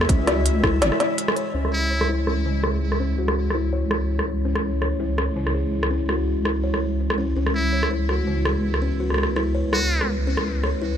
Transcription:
0.00 1.51 G#3 medium
0.00 1.51 E4 medium
0.00 1.54 E5 medium
0.00 cross-stick medium
0.09 0.63 C#2 loud
0.09 0.20 C#4 loud
0.09 kick loud
0.09 closed hi-hat medium
0.27 0.45 F#4 medium
0.27 cross-stick medium
0.27 snare medium
0.27 closed hi-hat soft
0.46 closed hi-hat medium
0.63 0.83 C#2 medium
0.63 0.80 E4 loud
0.63 kick medium
0.63 cross-stick medium
0.81 0.91 G#1 loud
0.81 0.99 C#5 medium
0.81 snare loud
0.81 closed hi-hat medium
0.92 cross-stick medium
1.00 1.17 G#3 medium
1.00 snare medium
1.00 closed hi-hat soft
1.18 closed hi-hat medium
1.28 cross-stick medium
1.36 1.53 C#5 medium
1.36 closed hi-hat soft
1.54 7.35 C#2 medium
1.54 10.97 G#3 medium
1.54 1.66 C#4 medium
1.54 10.97 E4 medium
1.54 7.34 C#5 medium
1.65 cross-stick soft
1.73 2.09 E4 medium
1.91 2.07 C#5 medium
2.01 cross-stick medium
2.09 2.26 E4 medium
2.27 2.44 C#4 medium
2.27 cross-stick soft
2.46 2.62 C#3 medium
2.64 2.98 G#4 medium
2.64 cross-stick medium
2.92 cross-stick soft
3.00 3.11 C#4 medium
3.18 3.36 F#4 medium
3.28 cross-stick medium
3.50 cross-stick soft
3.54 3.71 E4 medium
3.73 3.90 C#5 medium
3.91 cross-stick medium
4.19 cross-stick soft
4.45 4.57 C#4 medium
4.55 cross-stick medium
4.81 4.98 C#5 medium
4.81 cross-stick soft
5.00 5.16 E4 medium
5.18 5.35 C#4 medium
5.18 cross-stick medium
5.36 5.53 C#3 medium
5.47 cross-stick soft
5.54 5.89 G#4 medium
5.83 cross-stick medium
5.91 6.02 C#4 medium
6.09 6.26 F#4 medium
6.09 cross-stick soft
6.45 6.62 E4 medium
6.45 cross-stick medium
6.64 6.81 C#5 medium
6.74 cross-stick soft
7.10 cross-stick medium
7.18 7.35 C#4 medium
7.36 10.97 C#2 medium
7.36 7.48 C#4 medium
7.36 10.97 B4 medium
7.46 cross-stick soft
7.55 7.91 E4 medium
7.73 7.89 C#5 medium
7.83 cross-stick medium
7.91 8.08 E4 medium
8.09 8.26 F#4 medium
8.09 cross-stick soft
8.27 8.44 C#3 medium
8.45 8.80 G#4 medium
8.45 cross-stick medium
8.74 cross-stick soft
8.82 8.93 C#4 medium
9.00 9.17 F#4 medium
9.10 cross-stick soft
9.14 cross-stick soft
9.18 cross-stick soft
9.23 cross-stick medium
9.36 9.53 E4 medium
9.36 cross-stick soft
9.55 9.72 C#5 medium
9.73 10.09 F#4 medium
9.73 cross-stick medium
10.01 cross-stick soft
10.27 10.39 C#4 medium
10.37 cross-stick medium
10.64 10.80 C#5 medium
10.64 cross-stick medium
10.82 10.97 E4 medium

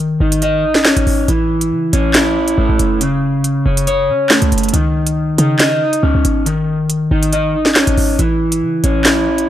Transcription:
0.00 0.17 G#1 loud
0.00 0.63 D#3 loud
0.20 0.94 G#1 loud
0.20 1.28 D#4 medium
0.32 closed hi-hat medium
0.42 1.29 D#5 loud
0.42 closed hi-hat medium
0.75 snare medium
0.85 1.28 C#4 medium
0.85 snare loud
0.85 clap medium
0.97 1.06 G#1 loud
0.97 closed hi-hat medium
1.07 1.27 G#1 loud
1.07 open hi-hat medium
1.28 1.73 A1 loud
1.28 2.37 E3 medium
1.28 closed hi-hat medium
1.61 closed hi-hat medium
1.72 1.92 C#3 loud
1.93 2.55 A1 loud
1.93 3.01 C#4 loud
1.93 closed hi-hat medium
2.14 3.01 E4 loud
2.14 snare loud
2.14 clap medium
2.14 closed hi-hat medium
2.48 closed hi-hat medium
2.58 2.69 G#1 loud
2.58 3.01 A3 medium
2.69 2.79 A1 loud
2.79 3.62 F#1 loud
2.79 closed hi-hat medium
3.01 4.09 C#3 loud
3.01 closed hi-hat medium
3.44 closed hi-hat medium
3.66 4.10 F#1 loud
3.66 4.74 C#4 medium
3.77 closed hi-hat medium
3.87 4.74 C#5 loud
3.87 closed hi-hat medium
4.09 4.40 C#3 loud
4.30 4.74 A3 medium
4.30 snare loud
4.30 clap medium
4.42 4.51 C#2 loud
4.42 closed hi-hat medium
4.52 4.73 F#1 loud
4.52 closed hi-hat medium
4.58 closed hi-hat medium
4.63 closed hi-hat medium
4.69 closed hi-hat medium
4.73 5.36 C#2 loud
4.73 5.81 D#3 medium
4.73 closed hi-hat medium
5.07 closed hi-hat medium
5.38 6.01 C#3 loud
5.38 6.46 D#4 medium
5.38 closed hi-hat medium
5.59 6.46 D#5 loud
5.59 snare loud
5.59 clap loud
5.59 closed hi-hat medium
5.93 closed hi-hat medium
6.03 6.14 C#2 loud
6.03 6.46 C#4 medium
6.15 6.24 C#2 loud
6.25 7.08 G#1 loud
6.25 closed hi-hat medium
6.46 7.54 D#3 medium
6.46 closed hi-hat medium
6.90 closed hi-hat medium
7.11 7.84 G#1 loud
7.11 8.19 D#4 medium
7.23 closed hi-hat medium
7.33 8.19 D#5 loud
7.33 closed hi-hat medium
7.66 snare medium
7.75 8.19 C#4 medium
7.75 snare loud
7.75 clap medium
7.87 7.97 G#1 loud
7.87 closed hi-hat medium
7.97 8.18 G#1 loud
7.97 open hi-hat medium
8.19 8.64 A1 loud
8.19 9.27 E3 medium
8.19 closed hi-hat medium
8.52 closed hi-hat medium
8.62 8.83 C#3 loud
8.84 9.46 A1 loud
8.84 9.49 C#4 medium
8.84 closed hi-hat medium
9.05 9.49 E4 loud
9.05 snare loud
9.05 clap medium
9.05 closed hi-hat medium
9.38 closed hi-hat medium

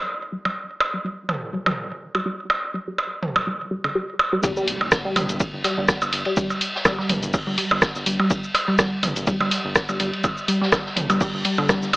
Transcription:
0.00 downlifter medium
0.32 0.38 G3 medium
0.45 0.50 G3 medium
0.45 percussion blips soft
0.80 percussion blips medium
0.94 0.99 G3 medium
1.05 1.11 G3 medium
1.29 mid tom medium
1.29 percussion blips soft
1.53 1.59 G3 medium
1.66 1.71 G3 medium
1.66 mid tom medium
1.66 percussion blips medium
2.15 2.20 G3 medium
2.15 percussion blips soft
2.26 2.32 G3 medium
2.50 percussion blips medium
2.74 2.80 G3 medium
2.88 2.92 G3 medium
2.98 percussion blips soft
3.23 mid tom medium
3.36 3.41 G3 medium
3.36 percussion blips medium
3.47 3.53 G3 medium
3.71 3.75 G3 medium
3.84 3.92 D3 medium
3.84 percussion blips soft
3.95 4.01 G3 medium
4.19 percussion blips medium
4.33 4.38 G3 medium
4.43 4.50 G3 medium
4.43 kick loud
4.43 ride medium
4.43 impact medium
4.43 cabasa medium
4.57 4.62 G3 medium
4.57 cabasa soft
4.68 open hi-hat medium
4.68 ride medium
4.81 percussion blips soft
4.92 kick loud
4.92 cross-stick loud
4.92 snare loud
4.92 ride medium
4.92 cabasa medium
5.05 5.10 G3 medium
5.16 5.27 G1 loud
5.16 5.22 G3 medium
5.16 mid tom medium
5.16 open hi-hat medium
5.16 ride medium
5.16 percussion blips medium
5.29 5.39 G1 loud
5.29 open hi-hat soft
5.29 cabasa soft
5.40 kick loud
5.40 ride medium
5.40 cabasa medium
5.53 5.63 G1 medium
5.64 5.70 G3 medium
5.64 snare soft
5.64 open hi-hat medium
5.64 ride medium
5.64 percussion blips soft
5.78 5.87 G1 medium
5.78 5.83 G3 medium
5.88 kick loud
5.88 cross-stick medium
5.88 snare loud
5.88 ride medium
5.88 cabasa medium
6.02 6.11 G1 medium
6.02 cabasa soft
6.02 percussion blips medium
6.13 6.24 G1 medium
6.13 open hi-hat medium
6.13 ride medium
6.25 6.31 G3 medium
6.25 ride soft
6.37 6.43 G3 medium
6.37 kick loud
6.37 ride medium
6.37 cabasa medium
6.50 cabasa soft
6.50 percussion blips soft
6.61 open hi-hat medium
6.61 ride medium
6.75 snare medium
6.85 6.91 G3 medium
6.85 kick loud
6.85 cross-stick medium
6.85 snare loud
6.85 ride medium
6.85 cabasa medium
6.85 percussion blips medium
6.99 7.04 G3 medium
6.99 snare medium
7.09 7.21 G1 loud
7.09 mid tom medium
7.09 open hi-hat medium
7.09 ride medium
7.23 7.32 G1 loud
7.23 open hi-hat soft
7.23 cabasa soft
7.34 kick loud
7.34 open hi-hat medium
7.34 cabasa medium
7.34 percussion blips soft
7.47 7.56 G1 medium
7.47 7.52 G3 medium
7.58 7.64 G3 medium
7.58 open hi-hat medium
7.58 ride medium
7.71 7.80 G1 medium
7.71 percussion blips medium
7.82 kick loud
7.82 cross-stick medium
7.82 snare loud
7.82 ride medium
7.82 cabasa medium
7.95 8.05 G1 medium
7.95 snare soft
7.95 cabasa soft
8.06 8.18 G1 medium
8.06 8.12 G3 medium
8.06 open hi-hat loud
8.06 ride medium
8.20 8.25 G3 medium
8.20 percussion blips soft
8.30 kick loud
8.30 ride medium
8.30 cabasa medium
8.44 cabasa soft
8.55 open hi-hat medium
8.55 ride medium
8.55 percussion blips medium
8.68 8.73 G3 medium
8.79 8.85 G3 medium
8.79 kick loud
8.79 cross-stick medium
8.79 snare loud
8.79 ride medium
8.79 cabasa medium
9.03 9.14 G1 loud
9.03 mid tom medium
9.03 open hi-hat loud
9.03 ride medium
9.03 percussion blips soft
9.16 9.26 G1 loud
9.16 open hi-hat soft
9.16 cabasa soft
9.27 9.33 G3 medium
9.27 kick loud
9.27 ride medium
9.27 cabasa medium
9.40 9.50 G1 medium
9.40 9.45 G3 medium
9.40 percussion blips medium
9.51 snare soft
9.51 open hi-hat medium
9.51 ride medium
9.65 9.74 G1 medium
9.75 kick loud
9.75 cross-stick loud
9.75 snare loud
9.75 ride medium
9.75 cabasa medium
9.89 9.98 G1 medium
9.89 9.94 G3 medium
9.89 cabasa soft
9.89 percussion blips soft
10.00 10.11 G1 loud
10.00 10.06 G3 medium
10.00 open hi-hat loud
10.00 ride medium
10.13 ride soft
10.24 kick loud
10.24 ride medium
10.24 cabasa medium
10.24 percussion blips medium
10.37 cabasa soft
10.48 10.54 G3 medium
10.48 open hi-hat medium
10.48 ride medium
10.61 10.66 G3 medium
10.61 snare medium
10.72 kick loud
10.72 cross-stick medium
10.72 snare loud
10.72 ride medium
10.72 cabasa medium
10.72 percussion blips soft
10.86 snare soft
10.96 11.08 G1 loud
10.96 mid tom medium
10.96 open hi-hat loud
10.96 ride medium
11.10 11.19 G1 loud
11.10 11.15 G3 medium
11.10 open hi-hat soft
11.10 cabasa soft
11.10 percussion blips medium
11.21 11.27 G3 medium
11.21 kick loud
11.21 open hi-hat medium
11.21 cabasa medium
11.34 11.43 G1 medium
11.44 11.49 G3 medium
11.44 open hi-hat loud
11.44 ride medium
11.58 11.68 G1 medium
11.58 11.66 D3 medium
11.58 percussion blips soft
11.69 11.75 G3 medium
11.69 kick loud
11.69 cross-stick medium
11.69 snare loud
11.69 ride medium
11.69 cabasa medium
11.82 11.92 G1 medium
11.82 snare soft
11.82 cabasa soft
11.93 11.97 G1 medium
11.93 open hi-hat loud
11.93 ride medium
11.93 percussion blips medium

